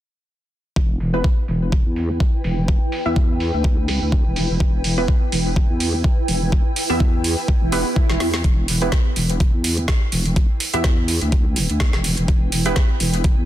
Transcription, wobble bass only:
0, 0, Header, 1, 2, 480
1, 0, Start_track
1, 0, Key_signature, 1, "minor"
1, 0, Tempo, 480000
1, 763, Time_signature, 4, 2, 24, 8
1, 13454, End_track
2, 0, Start_track
2, 0, Title_t, "Wobble bass"
2, 0, Program_c, 0, 39
2, 763, Note_on_c, 0, 28, 93
2, 986, Note_off_c, 0, 28, 0
2, 1003, Note_on_c, 0, 28, 92
2, 1226, Note_off_c, 0, 28, 0
2, 1483, Note_on_c, 0, 28, 88
2, 1834, Note_off_c, 0, 28, 0
2, 1855, Note_on_c, 0, 40, 94
2, 2186, Note_off_c, 0, 40, 0
2, 2442, Note_on_c, 0, 28, 91
2, 2794, Note_off_c, 0, 28, 0
2, 3055, Note_on_c, 0, 40, 96
2, 3514, Note_off_c, 0, 40, 0
2, 3536, Note_on_c, 0, 38, 93
2, 3994, Note_off_c, 0, 38, 0
2, 4015, Note_on_c, 0, 38, 91
2, 4234, Note_off_c, 0, 38, 0
2, 4256, Note_on_c, 0, 28, 94
2, 4474, Note_off_c, 0, 28, 0
2, 4496, Note_on_c, 0, 28, 85
2, 4586, Note_off_c, 0, 28, 0
2, 4603, Note_on_c, 0, 28, 96
2, 4826, Note_off_c, 0, 28, 0
2, 4843, Note_on_c, 0, 28, 93
2, 5066, Note_off_c, 0, 28, 0
2, 5323, Note_on_c, 0, 28, 93
2, 5674, Note_off_c, 0, 28, 0
2, 5695, Note_on_c, 0, 40, 90
2, 6026, Note_off_c, 0, 40, 0
2, 6282, Note_on_c, 0, 28, 92
2, 6634, Note_off_c, 0, 28, 0
2, 6896, Note_on_c, 0, 40, 90
2, 7354, Note_off_c, 0, 40, 0
2, 7616, Note_on_c, 0, 28, 93
2, 7834, Note_off_c, 0, 28, 0
2, 8096, Note_on_c, 0, 28, 94
2, 8186, Note_off_c, 0, 28, 0
2, 8203, Note_on_c, 0, 40, 90
2, 8426, Note_off_c, 0, 40, 0
2, 8443, Note_on_c, 0, 28, 93
2, 8666, Note_off_c, 0, 28, 0
2, 8683, Note_on_c, 0, 28, 92
2, 8906, Note_off_c, 0, 28, 0
2, 9163, Note_on_c, 0, 28, 94
2, 9514, Note_off_c, 0, 28, 0
2, 9536, Note_on_c, 0, 40, 96
2, 9866, Note_off_c, 0, 40, 0
2, 10122, Note_on_c, 0, 28, 91
2, 10474, Note_off_c, 0, 28, 0
2, 10735, Note_on_c, 0, 40, 94
2, 11194, Note_off_c, 0, 40, 0
2, 11215, Note_on_c, 0, 38, 101
2, 11674, Note_off_c, 0, 38, 0
2, 11696, Note_on_c, 0, 38, 93
2, 11914, Note_off_c, 0, 38, 0
2, 11935, Note_on_c, 0, 28, 98
2, 12154, Note_off_c, 0, 28, 0
2, 12175, Note_on_c, 0, 28, 83
2, 12266, Note_off_c, 0, 28, 0
2, 12283, Note_on_c, 0, 28, 92
2, 12506, Note_off_c, 0, 28, 0
2, 12523, Note_on_c, 0, 28, 95
2, 12746, Note_off_c, 0, 28, 0
2, 13003, Note_on_c, 0, 28, 94
2, 13355, Note_off_c, 0, 28, 0
2, 13377, Note_on_c, 0, 40, 94
2, 13454, Note_off_c, 0, 40, 0
2, 13454, End_track
0, 0, End_of_file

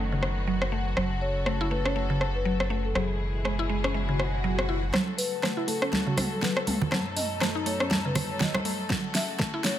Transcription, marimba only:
0, 0, Header, 1, 2, 480
1, 0, Start_track
1, 0, Tempo, 495868
1, 938, Time_signature, 4, 2, 24, 8
1, 9475, End_track
2, 0, Start_track
2, 0, Title_t, "Marimba"
2, 0, Program_c, 0, 12
2, 1174, Note_on_c, 0, 73, 102
2, 1649, Note_on_c, 0, 71, 91
2, 1671, Note_off_c, 0, 73, 0
2, 1714, Note_off_c, 0, 71, 0
2, 1793, Note_on_c, 0, 73, 101
2, 2241, Note_off_c, 0, 73, 0
2, 2277, Note_on_c, 0, 71, 96
2, 2723, Note_off_c, 0, 71, 0
2, 2757, Note_on_c, 0, 69, 81
2, 2851, Note_off_c, 0, 69, 0
2, 2858, Note_on_c, 0, 68, 77
2, 4259, Note_off_c, 0, 68, 0
2, 5012, Note_on_c, 0, 71, 106
2, 5490, Note_on_c, 0, 69, 99
2, 5509, Note_off_c, 0, 71, 0
2, 5878, Note_on_c, 0, 66, 77
2, 5884, Note_off_c, 0, 69, 0
2, 6120, Note_on_c, 0, 69, 89
2, 6124, Note_off_c, 0, 66, 0
2, 6212, Note_off_c, 0, 69, 0
2, 6221, Note_on_c, 0, 71, 84
2, 6443, Note_off_c, 0, 71, 0
2, 6934, Note_on_c, 0, 75, 102
2, 7419, Note_on_c, 0, 73, 103
2, 7430, Note_off_c, 0, 75, 0
2, 7803, Note_on_c, 0, 71, 83
2, 7809, Note_off_c, 0, 73, 0
2, 8044, Note_on_c, 0, 73, 86
2, 8047, Note_off_c, 0, 71, 0
2, 8144, Note_off_c, 0, 73, 0
2, 8145, Note_on_c, 0, 75, 85
2, 8365, Note_off_c, 0, 75, 0
2, 8859, Note_on_c, 0, 76, 107
2, 9329, Note_on_c, 0, 73, 100
2, 9353, Note_off_c, 0, 76, 0
2, 9475, Note_off_c, 0, 73, 0
2, 9475, End_track
0, 0, End_of_file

